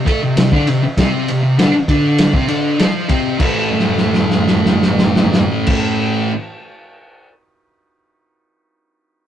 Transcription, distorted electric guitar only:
0, 0, Header, 1, 3, 480
1, 0, Start_track
1, 0, Key_signature, 0, "minor"
1, 0, Tempo, 606673
1, 776, Time_signature, 4, 2, 24, 8
1, 7335, End_track
2, 0, Start_track
2, 0, Title_t, "Distorted electric guitar"
2, 0, Program_c, 0, 30
2, 47, Note_on_c, 0, 57, 82
2, 59, Note_on_c, 0, 69, 106
2, 164, Note_off_c, 0, 57, 0
2, 170, Note_off_c, 0, 69, 0
2, 183, Note_on_c, 0, 48, 72
2, 286, Note_off_c, 0, 48, 0
2, 296, Note_on_c, 0, 48, 74
2, 416, Note_off_c, 0, 48, 0
2, 420, Note_on_c, 0, 50, 91
2, 430, Note_on_c, 0, 62, 108
2, 531, Note_off_c, 0, 50, 0
2, 536, Note_off_c, 0, 62, 0
2, 540, Note_on_c, 0, 48, 79
2, 650, Note_off_c, 0, 48, 0
2, 783, Note_on_c, 0, 48, 89
2, 789, Note_on_c, 0, 60, 103
2, 1012, Note_off_c, 0, 48, 0
2, 1016, Note_off_c, 0, 60, 0
2, 1026, Note_on_c, 0, 48, 77
2, 1120, Note_off_c, 0, 48, 0
2, 1129, Note_on_c, 0, 48, 71
2, 1251, Note_off_c, 0, 48, 0
2, 1254, Note_on_c, 0, 50, 89
2, 1257, Note_on_c, 0, 62, 110
2, 1363, Note_off_c, 0, 50, 0
2, 1370, Note_off_c, 0, 62, 0
2, 1494, Note_on_c, 0, 50, 84
2, 1502, Note_on_c, 0, 62, 81
2, 1847, Note_off_c, 0, 50, 0
2, 1850, Note_on_c, 0, 48, 86
2, 1853, Note_off_c, 0, 62, 0
2, 1863, Note_on_c, 0, 60, 98
2, 1959, Note_off_c, 0, 48, 0
2, 1962, Note_on_c, 0, 50, 85
2, 1964, Note_off_c, 0, 60, 0
2, 1967, Note_on_c, 0, 62, 88
2, 2203, Note_off_c, 0, 50, 0
2, 2205, Note_off_c, 0, 62, 0
2, 2214, Note_on_c, 0, 53, 92
2, 2220, Note_on_c, 0, 65, 102
2, 2445, Note_off_c, 0, 53, 0
2, 2448, Note_on_c, 0, 48, 89
2, 2451, Note_off_c, 0, 65, 0
2, 2454, Note_on_c, 0, 60, 111
2, 2671, Note_off_c, 0, 48, 0
2, 2674, Note_on_c, 0, 45, 96
2, 2688, Note_off_c, 0, 60, 0
2, 2692, Note_on_c, 0, 52, 93
2, 2708, Note_on_c, 0, 57, 97
2, 4994, Note_off_c, 0, 45, 0
2, 4994, Note_off_c, 0, 52, 0
2, 4994, Note_off_c, 0, 57, 0
2, 7335, End_track
3, 0, Start_track
3, 0, Title_t, "Muted distorted electric guitar strokes"
3, 660, Note_on_c, 9, 29, 64
3, 739, Note_off_c, 9, 29, 0
3, 1366, Note_on_c, 9, 29, 59
3, 1446, Note_off_c, 9, 29, 0
3, 7335, End_track
0, 0, End_of_file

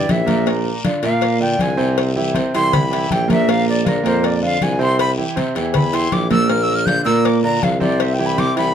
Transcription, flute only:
0, 0, Header, 1, 2, 480
1, 0, Start_track
1, 0, Tempo, 376884
1, 591, Time_signature, 4, 2, 24, 8
1, 11134, End_track
2, 0, Start_track
2, 0, Title_t, "Flute"
2, 0, Program_c, 0, 73
2, 0, Note_on_c, 0, 74, 90
2, 144, Note_on_c, 0, 76, 82
2, 163, Note_off_c, 0, 74, 0
2, 608, Note_off_c, 0, 76, 0
2, 1330, Note_on_c, 0, 77, 92
2, 1769, Note_off_c, 0, 77, 0
2, 1800, Note_on_c, 0, 79, 91
2, 2060, Note_on_c, 0, 80, 79
2, 2079, Note_off_c, 0, 79, 0
2, 2528, Note_off_c, 0, 80, 0
2, 3246, Note_on_c, 0, 84, 109
2, 3481, Note_on_c, 0, 83, 91
2, 3500, Note_off_c, 0, 84, 0
2, 3973, Note_on_c, 0, 79, 88
2, 3992, Note_off_c, 0, 83, 0
2, 4206, Note_off_c, 0, 79, 0
2, 4220, Note_on_c, 0, 76, 106
2, 4456, Note_on_c, 0, 77, 108
2, 4475, Note_off_c, 0, 76, 0
2, 4687, Note_off_c, 0, 77, 0
2, 4703, Note_on_c, 0, 74, 93
2, 4943, Note_on_c, 0, 70, 79
2, 4962, Note_off_c, 0, 74, 0
2, 5161, Note_off_c, 0, 70, 0
2, 5169, Note_on_c, 0, 72, 85
2, 5409, Note_on_c, 0, 74, 77
2, 5429, Note_off_c, 0, 72, 0
2, 5645, Note_off_c, 0, 74, 0
2, 5662, Note_on_c, 0, 77, 102
2, 5897, Note_on_c, 0, 80, 89
2, 5916, Note_off_c, 0, 77, 0
2, 6129, Note_off_c, 0, 80, 0
2, 6142, Note_on_c, 0, 84, 113
2, 6355, Note_off_c, 0, 84, 0
2, 6370, Note_on_c, 0, 83, 105
2, 6511, Note_off_c, 0, 83, 0
2, 7317, Note_on_c, 0, 83, 92
2, 7575, Note_on_c, 0, 84, 108
2, 7594, Note_off_c, 0, 83, 0
2, 7804, Note_on_c, 0, 86, 95
2, 7823, Note_off_c, 0, 84, 0
2, 8030, Note_off_c, 0, 86, 0
2, 8037, Note_on_c, 0, 88, 106
2, 8265, Note_on_c, 0, 89, 109
2, 8284, Note_off_c, 0, 88, 0
2, 8444, Note_on_c, 0, 88, 98
2, 8463, Note_off_c, 0, 89, 0
2, 8600, Note_on_c, 0, 89, 99
2, 8619, Note_off_c, 0, 88, 0
2, 8737, Note_on_c, 0, 91, 102
2, 8756, Note_off_c, 0, 89, 0
2, 8971, Note_off_c, 0, 91, 0
2, 8978, Note_on_c, 0, 88, 94
2, 9236, Note_on_c, 0, 86, 87
2, 9255, Note_off_c, 0, 88, 0
2, 9459, Note_off_c, 0, 86, 0
2, 9466, Note_on_c, 0, 82, 112
2, 9722, Note_on_c, 0, 77, 89
2, 9742, Note_off_c, 0, 82, 0
2, 9945, Note_off_c, 0, 77, 0
2, 9953, Note_on_c, 0, 74, 99
2, 10210, Note_on_c, 0, 76, 88
2, 10230, Note_off_c, 0, 74, 0
2, 10364, Note_on_c, 0, 79, 85
2, 10383, Note_off_c, 0, 76, 0
2, 10521, Note_on_c, 0, 83, 93
2, 10541, Note_off_c, 0, 79, 0
2, 10688, Note_on_c, 0, 86, 103
2, 10707, Note_off_c, 0, 83, 0
2, 10917, Note_off_c, 0, 86, 0
2, 10924, Note_on_c, 0, 83, 112
2, 11134, Note_off_c, 0, 83, 0
2, 11134, End_track
0, 0, End_of_file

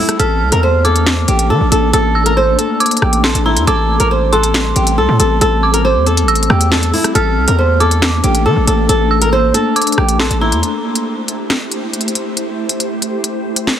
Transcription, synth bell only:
0, 0, Header, 1, 2, 480
1, 0, Start_track
1, 0, Tempo, 434783
1, 216, Time_signature, 4, 2, 24, 8
1, 15231, End_track
2, 0, Start_track
2, 0, Title_t, "Synth bell"
2, 0, Program_c, 0, 98
2, 0, Note_on_c, 0, 88, 87
2, 171, Note_off_c, 0, 88, 0
2, 217, Note_on_c, 0, 89, 87
2, 893, Note_off_c, 0, 89, 0
2, 934, Note_on_c, 0, 86, 74
2, 2091, Note_off_c, 0, 86, 0
2, 2375, Note_on_c, 0, 88, 74
2, 3052, Note_off_c, 0, 88, 0
2, 3094, Note_on_c, 0, 86, 81
2, 3546, Note_off_c, 0, 86, 0
2, 3574, Note_on_c, 0, 84, 78
2, 3803, Note_off_c, 0, 84, 0
2, 3816, Note_on_c, 0, 82, 81
2, 4044, Note_off_c, 0, 82, 0
2, 4057, Note_on_c, 0, 86, 108
2, 4733, Note_off_c, 0, 86, 0
2, 4774, Note_on_c, 0, 84, 80
2, 5931, Note_off_c, 0, 84, 0
2, 6216, Note_on_c, 0, 86, 79
2, 6893, Note_off_c, 0, 86, 0
2, 6935, Note_on_c, 0, 88, 89
2, 7851, Note_off_c, 0, 88, 0
2, 7896, Note_on_c, 0, 89, 90
2, 8573, Note_off_c, 0, 89, 0
2, 8614, Note_on_c, 0, 86, 75
2, 9771, Note_off_c, 0, 86, 0
2, 10055, Note_on_c, 0, 88, 74
2, 10732, Note_off_c, 0, 88, 0
2, 10774, Note_on_c, 0, 86, 81
2, 11226, Note_off_c, 0, 86, 0
2, 11254, Note_on_c, 0, 84, 76
2, 11483, Note_off_c, 0, 84, 0
2, 11497, Note_on_c, 0, 82, 83
2, 11724, Note_off_c, 0, 82, 0
2, 15231, End_track
0, 0, End_of_file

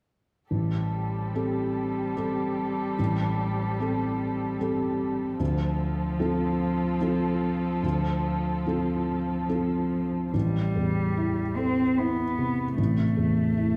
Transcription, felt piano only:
0, 0, Header, 1, 2, 480
1, 0, Start_track
1, 0, Key_signature, 0, "minor"
1, 0, Tempo, 826446
1, 297, Time_signature, 3, 2, 24, 8
1, 1733, Tempo, 804290
1, 4133, Tempo, 831025
1, 6533, Tempo, 805369
1, 8085, End_track
2, 0, Start_track
2, 0, Title_t, "Felt piano"
2, 0, Program_c, 0, 0
2, 296, Note_on_c, 0, 33, 32
2, 401, Control_c, 0, 64, 127
2, 765, Note_off_c, 0, 33, 0
2, 783, Note_on_c, 0, 60, 27
2, 785, Note_on_c, 0, 67, 26
2, 787, Note_on_c, 0, 69, 27
2, 1234, Note_off_c, 0, 60, 0
2, 1235, Note_off_c, 0, 67, 0
2, 1236, Note_off_c, 0, 69, 0
2, 1257, Note_on_c, 0, 60, 28
2, 1259, Note_on_c, 0, 67, 27
2, 1261, Note_on_c, 0, 69, 31
2, 1710, Note_off_c, 0, 60, 0
2, 1711, Note_off_c, 0, 67, 0
2, 1712, Note_off_c, 0, 69, 0
2, 1735, Note_on_c, 0, 33, 36
2, 1744, Control_c, 0, 64, 0
2, 1826, Control_c, 0, 64, 127
2, 2203, Note_off_c, 0, 33, 0
2, 2217, Note_on_c, 0, 60, 34
2, 2221, Note_on_c, 0, 67, 31
2, 2223, Note_on_c, 0, 69, 32
2, 2673, Note_off_c, 0, 60, 0
2, 2675, Note_off_c, 0, 67, 0
2, 2676, Note_off_c, 0, 69, 0
2, 2695, Note_on_c, 0, 60, 32
2, 2701, Note_on_c, 0, 69, 37
2, 2702, Note_on_c, 0, 67, 35
2, 3148, Note_off_c, 0, 60, 0
2, 3151, Note_off_c, 0, 67, 0
2, 3151, Note_off_c, 0, 69, 0
2, 3171, Note_on_c, 0, 38, 47
2, 3183, Control_c, 0, 64, 0
2, 3268, Control_c, 0, 64, 127
2, 3633, Note_off_c, 0, 38, 0
2, 3648, Note_on_c, 0, 65, 37
2, 3649, Note_on_c, 0, 60, 37
2, 3652, Note_on_c, 0, 69, 40
2, 4110, Note_off_c, 0, 65, 0
2, 4111, Note_off_c, 0, 60, 0
2, 4112, Note_off_c, 0, 69, 0
2, 4135, Note_on_c, 0, 60, 35
2, 4138, Note_on_c, 0, 65, 37
2, 4139, Note_on_c, 0, 69, 40
2, 4587, Note_off_c, 0, 60, 0
2, 4588, Note_off_c, 0, 65, 0
2, 4589, Note_off_c, 0, 69, 0
2, 4609, Note_on_c, 0, 38, 46
2, 4621, Control_c, 0, 64, 0
2, 4721, Control_c, 0, 64, 127
2, 5072, Note_off_c, 0, 38, 0
2, 5090, Note_on_c, 0, 60, 32
2, 5091, Note_on_c, 0, 65, 34
2, 5095, Note_on_c, 0, 69, 35
2, 5546, Note_off_c, 0, 60, 0
2, 5546, Note_off_c, 0, 65, 0
2, 5548, Note_off_c, 0, 69, 0
2, 5564, Note_on_c, 0, 60, 31
2, 5569, Note_on_c, 0, 65, 30
2, 5569, Note_on_c, 0, 69, 31
2, 6035, Note_off_c, 0, 60, 0
2, 6037, Note_off_c, 0, 65, 0
2, 6037, Note_off_c, 0, 69, 0
2, 6057, Note_on_c, 0, 33, 36
2, 6069, Control_c, 0, 64, 0
2, 6177, Control_c, 0, 64, 127
2, 6298, Note_on_c, 0, 40, 31
2, 6538, Note_on_c, 0, 64, 30
2, 6681, Note_off_c, 0, 40, 0
2, 6779, Note_on_c, 0, 69, 31
2, 6927, Note_off_c, 0, 64, 0
2, 7023, Note_on_c, 0, 64, 33
2, 7166, Note_off_c, 0, 69, 0
2, 7261, Note_on_c, 0, 48, 29
2, 7404, Note_off_c, 0, 64, 0
2, 7474, Note_off_c, 0, 33, 0
2, 7496, Note_on_c, 0, 33, 40
2, 7509, Control_c, 0, 64, 0
2, 7599, Control_c, 0, 64, 127
2, 7642, Note_off_c, 0, 48, 0
2, 7731, Note_on_c, 0, 40, 29
2, 7970, Note_on_c, 0, 64, 33
2, 8085, Note_off_c, 0, 33, 0
2, 8085, Note_off_c, 0, 40, 0
2, 8085, Note_off_c, 0, 64, 0
2, 8085, End_track
0, 0, End_of_file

